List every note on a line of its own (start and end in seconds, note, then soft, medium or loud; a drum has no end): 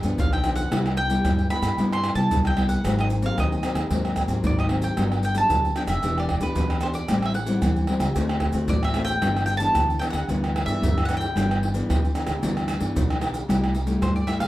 0.00 0.16 G2 medium
0.00 pandeiro medium
0.00 maracas medium
0.04 0.16 G2 medium
0.04 0.41 F3 medium
0.04 0.41 B3 medium
0.04 0.41 D4 medium
0.18 0.64 B1 medium
0.18 0.70 D3 medium
0.18 0.31 F5 medium
0.18 pandeiro medium
0.18 maracas medium
0.18 surdo loud
0.33 0.55 G5 medium
0.33 pandeiro soft
0.33 tamborim medium
0.33 maracas soft
0.44 0.67 F3 medium
0.44 0.68 B3 medium
0.44 0.68 D4 medium
0.44 pandeiro medium
0.44 tamborim medium
0.44 maracas medium
0.56 0.94 F#5 medium
0.56 pandeiro medium
0.56 maracas medium
0.71 1.17 C2 loud
0.71 1.22 C3 medium
0.71 0.97 G3 medium
0.71 0.97 B3 medium
0.71 0.97 E4 medium
0.71 pandeiro medium
0.71 tamborim medium
0.71 maracas medium
0.71 surdo medium
0.86 pandeiro soft
0.86 tamborim medium
0.86 maracas soft
0.97 1.50 G5 loud
0.97 pandeiro medium
1.10 1.47 G3 medium
1.10 1.47 B3 medium
1.10 1.47 E4 medium
1.10 pandeiro medium
1.10 maracas medium
1.25 1.47 G2 medium
1.25 1.75 G2 medium
1.25 pandeiro medium
1.25 tamborim medium
1.25 maracas medium
1.25 surdo loud
1.38 pandeiro soft
1.38 maracas soft
1.50 1.74 G3 medium
1.50 1.74 B3 medium
1.50 1.74 E4 medium
1.50 1.92 B5 loud
1.50 pandeiro medium
1.50 tamborim medium
1.50 maracas medium
1.62 1.74 G2 medium
1.62 pandeiro medium
1.62 tamborim medium
1.62 maracas medium
1.77 2.11 G2 medium
1.77 2.29 C3 medium
1.77 2.14 G3 medium
1.77 2.14 B3 medium
1.77 2.14 E4 medium
1.77 pandeiro medium
1.77 maracas medium
1.77 surdo medium
1.93 2.15 C6 loud
1.93 pandeiro soft
1.93 tamborim medium
1.93 maracas soft
2.04 pandeiro medium
2.04 tamborim medium
2.04 maracas medium
2.15 2.28 C3 medium
2.15 2.53 G3 medium
2.15 2.53 B3 medium
2.15 2.53 E4 medium
2.15 2.41 A5 medium
2.15 pandeiro medium
2.15 maracas medium
2.30 2.76 C2 medium
2.30 2.82 G2 medium
2.30 pandeiro medium
2.30 maracas medium
2.30 surdo loud
2.45 2.68 G5 loud
2.45 pandeiro soft
2.45 tamborim medium
2.45 maracas soft
2.57 2.80 G3 medium
2.57 2.80 B3 medium
2.57 2.80 E4 medium
2.57 pandeiro medium
2.57 tamborim medium
2.69 2.97 F#5 medium
2.69 pandeiro medium
2.69 maracas medium
2.84 3.29 G#1 loud
2.84 3.35 G#2 medium
2.84 3.20 F#3 medium
2.84 3.21 A#3 medium
2.84 3.21 C4 medium
2.84 pandeiro medium
2.84 tamborim medium
2.84 maracas medium
2.84 surdo medium
2.99 3.07 D#5 medium
2.99 pandeiro soft
2.99 tamborim medium
2.99 maracas soft
3.10 pandeiro medium
3.10 maracas medium
3.22 3.59 F#3 medium
3.22 3.59 A#3 medium
3.22 3.59 C4 medium
3.22 pandeiro medium
3.22 maracas medium
3.26 3.39 F5 medium
3.37 3.60 D#2 medium
3.37 3.88 D#3 medium
3.37 4.41 D#5 medium
3.37 pandeiro medium
3.37 tamborim medium
3.37 maracas medium
3.37 surdo medium
3.52 pandeiro soft
3.52 maracas soft
3.63 3.79 F#3 medium
3.63 3.79 A#3 medium
3.63 3.79 C4 medium
3.63 pandeiro medium
3.63 tamborim medium
3.63 maracas medium
3.75 3.87 D#2 loud
3.75 pandeiro medium
3.75 tamborim medium
3.75 maracas medium
3.90 4.24 D#2 medium
3.90 4.41 G#2 medium
3.90 4.26 F#3 medium
3.90 4.27 A#3 medium
3.90 4.27 C4 medium
3.90 pandeiro medium
3.90 maracas medium
3.90 surdo medium
4.05 pandeiro soft
4.05 tamborim medium
4.05 maracas soft
4.16 pandeiro medium
4.16 tamborim medium
4.16 maracas medium
4.16 surdo medium
4.28 4.40 G#2 medium
4.28 4.65 F#3 medium
4.28 4.65 A#3 medium
4.28 4.66 C4 medium
4.28 pandeiro medium
4.28 maracas medium
4.44 4.89 G#1 loud
4.44 4.95 D#3 medium
4.44 4.59 D5 medium
4.44 pandeiro medium
4.44 maracas medium
4.44 surdo loud
4.59 4.66 D#5 medium
4.59 pandeiro soft
4.59 tamborim medium
4.59 maracas soft
4.69 4.93 F#3 soft
4.69 4.93 A#3 medium
4.69 4.93 C4 medium
4.69 pandeiro medium
4.69 tamborim medium
4.82 5.23 G5 medium
4.82 pandeiro medium
4.82 maracas medium
4.97 5.42 G1 loud
4.97 5.48 G2 medium
4.97 5.22 F#3 medium
4.97 5.23 B3 medium
4.97 5.23 D4 medium
4.97 pandeiro medium
4.97 tamborim medium
4.97 maracas medium
4.97 surdo medium
5.12 pandeiro soft
5.12 tamborim medium
5.12 maracas soft
5.23 5.37 G5 medium
5.23 pandeiro medium
5.23 maracas medium
5.35 5.72 F#3 medium
5.35 5.72 B3 medium
5.35 5.72 D4 medium
5.35 5.74 A5 medium
5.35 pandeiro medium
5.35 maracas medium
5.50 5.73 D2 medium
5.50 6.01 D3 medium
5.50 pandeiro medium
5.50 tamborim medium
5.50 maracas medium
5.50 surdo loud
5.65 pandeiro soft
5.65 maracas soft
5.76 5.92 F#3 medium
5.76 5.93 B3 medium
5.76 5.93 D4 medium
5.76 5.82 G5 medium
5.76 pandeiro medium
5.76 tamborim medium
5.76 maracas medium
5.88 6.00 F1 medium
5.88 6.17 E5 medium
5.88 pandeiro medium
5.88 tamborim medium
5.88 maracas medium
6.03 6.37 E1 medium
6.03 6.54 E3 medium
6.03 6.28 B3 medium
6.03 6.29 D4 medium
6.03 6.29 G4 medium
6.03 pandeiro medium
6.03 maracas medium
6.03 surdo medium
6.18 6.42 D5 medium
6.18 pandeiro soft
6.18 tamborim medium
6.18 maracas soft
6.29 pandeiro medium
6.29 tamborim medium
6.29 surdo medium
6.40 6.53 E2 medium
6.40 6.78 B3 medium
6.40 6.78 D4 medium
6.40 6.78 G4 medium
6.40 6.80 B4 medium
6.40 pandeiro medium
6.40 maracas medium
6.55 7.01 E2 medium
6.55 7.07 B2 medium
6.55 pandeiro medium
6.55 maracas medium
6.55 surdo loud
6.70 pandeiro soft
6.70 tamborim medium
6.70 maracas soft
6.81 6.99 B3 medium
6.81 6.99 D4 medium
6.81 6.99 G4 medium
6.81 6.94 C5 medium
6.81 pandeiro medium
6.81 tamborim medium
6.81 maracas medium
6.94 7.23 D5 medium
6.94 pandeiro medium
6.94 maracas medium
7.08 7.54 A1 loud
7.08 7.61 A2 medium
7.08 7.35 G3 medium
7.08 7.35 C4 medium
7.08 7.35 E4 medium
7.08 pandeiro medium
7.08 tamborim medium
7.08 maracas medium
7.08 surdo medium
7.22 7.34 E5 medium
7.22 pandeiro soft
7.22 tamborim medium
7.22 maracas soft
7.34 8.38 F#5 medium
7.34 pandeiro medium
7.47 7.84 G3 medium
7.47 7.84 C4 medium
7.47 7.85 E4 medium
7.47 pandeiro medium
7.47 maracas medium
7.62 7.85 E2 medium
7.62 8.14 E3 medium
7.62 pandeiro medium
7.62 tamborim medium
7.62 maracas medium
7.62 surdo loud
7.76 pandeiro soft
7.76 maracas soft
7.87 8.05 G3 medium
7.87 8.05 C4 medium
7.87 8.05 E4 medium
7.87 pandeiro medium
7.87 tamborim medium
7.99 8.12 C#2 loud
7.99 pandeiro medium
7.99 tamborim medium
7.99 maracas medium
8.15 8.50 D2 medium
8.15 8.67 D3 medium
8.15 8.52 A3 medium
8.15 8.52 C4 medium
8.15 8.52 F#4 medium
8.15 pandeiro medium
8.15 maracas medium
8.15 surdo medium
8.29 pandeiro soft
8.29 tamborim medium
8.29 maracas soft
8.40 pandeiro medium
8.40 tamborim medium
8.40 surdo medium
8.53 8.66 D3 medium
8.53 8.91 A3 medium
8.53 8.91 C4 medium
8.53 8.91 F#4 medium
8.53 pandeiro medium
8.53 maracas medium
8.68 9.15 A1 medium
8.68 9.20 A2 medium
8.68 8.82 D5 medium
8.68 pandeiro medium
8.68 maracas medium
8.68 surdo loud
8.83 9.04 E5 medium
8.83 pandeiro soft
8.83 tamborim medium
8.83 maracas soft
8.94 9.12 A3 medium
8.94 9.12 C4 medium
8.94 9.12 F#4 medium
8.94 pandeiro medium
8.94 tamborim medium
8.94 maracas medium
9.05 9.45 G5 loud
9.05 pandeiro medium
9.05 maracas medium
9.22 9.68 G1 loud
9.22 9.73 G2 medium
9.22 9.47 E3 medium
9.22 9.48 B3 medium
9.22 9.48 D4 medium
9.22 pandeiro medium
9.22 tamborim medium
9.22 maracas medium
9.22 surdo medium
9.37 pandeiro soft
9.37 tamborim medium
9.37 maracas soft
9.46 9.57 G5 loud
9.46 pandeiro medium
9.46 maracas medium
9.57 9.97 E3 medium
9.57 9.97 B3 medium
9.57 9.98 D4 medium
9.57 9.99 A5 loud
9.57 pandeiro medium
9.57 maracas medium
9.75 9.98 D2 medium
9.75 10.26 D3 medium
9.75 pandeiro medium
9.75 tamborim medium
9.75 maracas medium
9.75 surdo medium
9.90 pandeiro soft
9.90 maracas soft
9.99 10.18 E3 medium
9.99 10.18 B3 medium
9.99 10.18 D4 medium
9.99 10.04 G5 loud
9.99 pandeiro medium
9.99 tamborim medium
9.99 maracas medium
10.10 10.26 D2 medium
10.10 10.62 F#5 loud
10.10 pandeiro medium
10.10 tamborim medium
10.10 maracas medium
10.28 10.63 D2 loud
10.28 10.80 G2 medium
10.28 10.65 E3 medium
10.28 10.65 B3 medium
10.28 10.65 D4 medium
10.28 pandeiro medium
10.28 maracas medium
10.28 surdo medium
10.44 pandeiro soft
10.44 tamborim medium
10.44 maracas soft
10.56 pandeiro medium
10.56 tamborim medium
10.66 10.79 G2 medium
10.66 11.04 E3 medium
10.66 11.04 B3 medium
10.66 11.05 D4 medium
10.66 11.05 E5 medium
10.66 pandeiro medium
10.66 maracas medium
10.82 11.27 G1 medium
10.82 11.33 D3 medium
10.82 pandeiro medium
10.82 maracas medium
10.82 surdo loud
10.98 pandeiro soft
10.98 tamborim medium
10.98 maracas soft
11.05 11.25 E3 medium
11.05 11.16 F#5 medium
11.05 pandeiro medium
11.05 tamborim medium
11.05 maracas medium
11.09 11.25 B3 medium
11.09 11.25 D4 medium
11.17 12.89 G5 medium
11.17 pandeiro medium
11.17 maracas medium
11.36 11.81 G1 loud
11.36 11.87 G2 medium
11.36 11.72 E3 medium
11.36 11.72 B3 medium
11.36 11.72 D4 medium
11.36 pandeiro medium
11.36 tamborim medium
11.36 maracas medium
11.36 surdo medium
11.51 pandeiro soft
11.51 tamborim medium
11.51 maracas soft
11.63 pandeiro medium
11.74 12.10 E3 medium
11.74 12.11 B3 medium
11.74 12.11 D4 medium
11.74 pandeiro medium
11.74 maracas medium
11.89 12.12 D2 medium
11.89 12.40 D3 medium
11.89 pandeiro medium
11.89 tamborim medium
11.89 maracas medium
11.89 surdo medium
12.05 pandeiro soft
12.05 maracas soft
12.14 12.31 E3 medium
12.14 12.31 B3 medium
12.14 12.31 D4 medium
12.14 pandeiro medium
12.14 tamborim medium
12.14 maracas medium
12.27 12.39 D2 loud
12.27 pandeiro medium
12.27 tamborim medium
12.27 maracas medium
12.42 12.76 D2 medium
12.42 12.93 G2 medium
12.42 12.78 E3 medium
12.42 12.78 B3 medium
12.42 12.79 D4 medium
12.42 pandeiro medium
12.42 maracas medium
12.42 surdo medium
12.57 pandeiro soft
12.57 tamborim medium
12.57 maracas soft
12.68 pandeiro medium
12.68 tamborim medium
12.68 maracas medium
12.79 12.93 G2 medium
12.79 13.17 E3 medium
12.79 13.17 B3 medium
12.79 13.17 D4 medium
12.79 pandeiro medium
12.79 maracas medium
12.95 13.41 B1 loud
12.95 13.46 D3 medium
12.95 pandeiro medium
12.95 maracas medium
12.95 surdo loud
13.10 pandeiro soft
13.10 tamborim medium
13.10 maracas soft
13.21 13.37 E3 medium
13.21 13.37 B3 medium
13.21 13.38 D4 medium
13.21 pandeiro medium
13.21 tamborim medium
13.21 maracas medium
13.34 pandeiro medium
13.34 maracas medium
13.48 13.94 C2 loud
13.48 13.99 C3 medium
13.48 13.74 G3 medium
13.48 13.74 A3 medium
13.48 13.74 E4 medium
13.48 pandeiro medium
13.48 tamborim medium
13.48 maracas medium
13.48 surdo medium
13.64 pandeiro soft
13.64 tamborim medium
13.64 maracas soft
13.75 pandeiro medium
13.75 maracas medium
13.86 14.23 G3 medium
13.86 14.24 A3 medium
13.86 14.24 E4 medium
13.86 pandeiro medium
13.86 maracas medium
14.01 14.48 G2 medium
14.01 14.36 G2 medium
14.01 14.15 C5 medium
14.01 pandeiro medium
14.01 tamborim medium
14.01 maracas medium
14.01 surdo medium
14.16 14.29 D5 medium
14.16 pandeiro soft
14.16 maracas soft
14.27 14.44 G3 medium
14.27 14.44 A3 medium
14.27 14.44 E4 medium
14.27 14.40 E5 medium
14.27 pandeiro medium
14.27 tamborim medium
14.27 maracas medium
14.40 14.48 C2 medium
14.40 14.48 F5 medium
14.40 pandeiro medium
14.40 tamborim medium
14.40 maracas medium